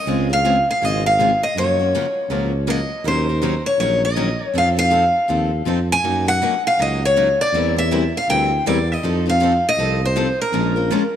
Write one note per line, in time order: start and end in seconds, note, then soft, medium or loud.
0.00 0.30 D#5 medium
0.06 0.66 C#2 medium
0.06 0.27 C#3 medium
0.06 0.28 G#3 medium
0.06 0.28 C4 medium
0.06 0.28 F4 medium
0.06 0.28 G#4 medium
0.29 0.44 C4 soft
0.29 0.44 F4 soft
0.29 0.43 G#4 soft
0.29 0.66 F5 medium
0.45 0.55 C#3 medium
0.45 0.55 G#3 medium
0.45 0.55 C4 medium
0.45 0.55 F4 medium
0.45 0.55 G#4 medium
0.71 0.85 F5 medium
0.81 1.41 G#1 medium
0.81 1.02 C#3 medium
0.81 1.02 G#3 medium
0.81 1.02 C4 medium
0.81 1.02 F4 medium
0.81 1.03 G#4 medium
0.81 1.06 D#5 medium
1.06 1.43 F5 medium
1.19 1.29 C#3 medium
1.19 1.30 G#3 medium
1.19 1.30 C4 medium
1.19 1.30 F4 medium
1.19 1.30 G#4 medium
1.43 1.56 D#5 medium
1.55 1.96 F#2 medium
1.55 1.77 C#3 medium
1.55 1.77 F3 medium
1.55 1.77 F#3 medium
1.55 1.77 A#3 medium
1.55 1.77 C#4 medium
1.55 1.78 F4 medium
1.55 1.77 F#4 medium
1.55 2.65 C#5 medium
1.60 1.78 A#4 medium
1.79 1.94 A#3 soft
1.79 1.94 C#4 soft
1.79 1.93 F#4 medium
1.94 2.05 C#3 medium
1.94 2.05 F3 medium
1.94 2.05 F#3 medium
1.94 2.05 A#3 medium
1.94 2.05 C#4 medium
1.94 2.05 F4 medium
1.94 2.05 F#4 medium
1.94 2.06 A#4 medium
2.29 2.90 C#2 medium
2.29 2.51 C#3 medium
2.29 2.51 F3 medium
2.29 2.51 F#3 medium
2.29 2.52 A#3 medium
2.29 2.52 C#4 medium
2.29 2.51 F4 medium
2.29 2.52 F#4 medium
2.29 2.51 A#4 medium
2.67 2.78 C#3 medium
2.67 2.79 F3 medium
2.67 2.79 F#3 medium
2.67 2.79 A#3 medium
2.67 2.79 C#4 medium
2.67 2.79 F4 medium
2.67 2.79 F#4 medium
2.67 2.79 A#4 medium
2.67 3.04 D#5 medium
3.04 3.64 D#2 medium
3.04 3.27 D#3 medium
3.04 3.27 F#3 medium
3.04 3.27 C#4 medium
3.04 3.27 D#4 medium
3.04 3.27 A#4 medium
3.04 3.63 C5 medium
3.29 3.42 C#4 soft
3.29 3.42 D#4 soft
3.29 3.42 A#4 medium
3.42 3.54 D#3 medium
3.42 3.53 F#3 medium
3.42 3.54 C#4 medium
3.42 3.54 D#4 medium
3.42 3.54 A#4 loud
3.66 3.79 C#5 medium
3.79 4.39 A#1 medium
3.79 4.01 D#3 medium
3.79 4.01 F#3 medium
3.79 4.01 C#4 medium
3.79 4.01 D#4 medium
3.79 4.01 A#4 medium
3.79 4.01 C#5 medium
4.05 4.46 D#5 medium
4.16 4.28 D#3 medium
4.16 4.28 F#3 medium
4.16 4.28 C#4 medium
4.16 4.28 D#4 medium
4.16 4.28 A#4 medium
4.46 4.57 C#5 medium
4.54 5.14 F2 medium
4.54 4.75 F3 medium
4.54 4.76 C4 medium
4.54 4.76 D#4 medium
4.54 4.75 A4 medium
4.58 4.68 F5 medium
4.77 4.90 C4 soft
4.77 4.90 D#4 soft
4.77 4.90 A4 medium
4.77 5.86 F5 loud
4.90 5.02 F3 medium
4.90 5.03 C4 medium
4.90 5.03 D#4 medium
4.90 5.03 A4 medium
5.28 5.61 D#2 medium
5.28 5.49 F3 medium
5.28 5.50 C4 medium
5.28 5.50 D#4 medium
5.28 5.50 A4 medium
5.65 5.98 F2 medium
5.65 5.77 F3 medium
5.65 5.78 C4 medium
5.65 5.77 D#4 medium
5.65 5.78 A4 medium
5.92 6.28 G#5 loud
6.04 6.44 F#2 medium
6.04 6.25 F#3 medium
6.04 6.25 A#3 medium
6.04 6.25 C#4 medium
6.04 6.25 D#4 medium
6.04 6.25 F#4 medium
6.04 6.25 A#4 medium
6.27 6.42 A#3 soft
6.27 6.41 D#4 soft
6.27 6.41 F#4 medium
6.27 6.63 F#5 loud
6.42 6.53 F#3 medium
6.42 6.53 A#3 medium
6.42 6.53 C#4 medium
6.42 6.54 D#4 medium
6.42 6.54 F#4 medium
6.42 6.53 A#4 medium
6.67 6.79 F5 medium
6.79 7.39 C#2 medium
6.79 7.00 F#3 medium
6.79 7.00 A#3 medium
6.79 7.00 C#4 medium
6.79 7.00 D#4 medium
6.79 7.01 F#4 medium
6.79 7.00 A#4 medium
6.79 7.04 D#5 medium
7.05 7.41 C#5 medium
7.17 7.28 F#3 medium
7.17 7.28 A#3 medium
7.17 7.27 C#4 medium
7.17 7.28 D#4 medium
7.17 7.28 F#4 medium
7.17 7.28 A#4 loud
7.41 7.75 D5 medium
7.52 8.13 E2 medium
7.52 7.75 E3 medium
7.52 7.75 G3 medium
7.52 7.75 C4 medium
7.52 7.75 E4 medium
7.52 7.75 A#4 medium
7.76 7.91 C4 soft
7.76 7.91 E4 soft
7.76 7.91 A#4 medium
7.76 8.16 E5 medium
7.92 8.02 E3 medium
7.92 8.03 G3 medium
7.92 8.03 C4 medium
7.92 8.03 E4 medium
7.92 8.03 A#4 medium
8.17 8.29 F5 medium
8.28 8.60 D2 medium
8.28 8.50 E3 medium
8.28 8.50 G3 medium
8.28 8.50 C4 medium
8.28 8.50 E4 medium
8.28 8.50 A#4 medium
8.28 8.67 G5 medium
8.65 8.97 E2 medium
8.65 8.77 E3 medium
8.65 8.77 G3 medium
8.65 8.78 C4 medium
8.65 8.78 E4 loud
8.65 8.78 A#4 medium
8.65 8.88 D5 medium
8.92 9.29 D#5 medium
9.03 9.63 F2 medium
9.03 9.24 F3 medium
9.03 9.24 C4 medium
9.03 9.25 D#4 medium
9.03 9.24 A4 medium
9.26 9.39 C4 soft
9.26 9.39 D#4 medium
9.26 9.40 A4 medium
9.26 9.66 F5 medium
9.40 9.51 F3 medium
9.40 9.52 C4 medium
9.40 9.52 D#4 medium
9.40 9.52 A4 medium
9.69 10.05 D#5 loud
9.77 10.38 C2 medium
9.77 9.99 F3 medium
9.77 9.99 C4 medium
9.77 10.00 D#4 medium
9.77 10.00 A4 medium
10.05 10.41 C5 medium
10.16 10.27 F3 medium
10.16 10.27 C4 medium
10.16 10.27 D#4 medium
10.16 10.27 A4 loud
10.42 11.16 A#4 medium
10.53 10.93 A#1 medium
10.53 10.74 F3 medium
10.53 10.74 G#3 medium
10.53 10.74 C#4 medium
10.53 10.74 F4 medium
10.53 10.74 A#4 medium
10.76 10.91 C#4 medium
10.76 10.91 F4 medium
10.76 10.90 A#4 medium
10.92 11.02 F3 medium
10.92 11.02 G#3 medium
10.92 11.02 C#4 medium
10.92 11.02 F4 medium
10.92 11.03 A#4 medium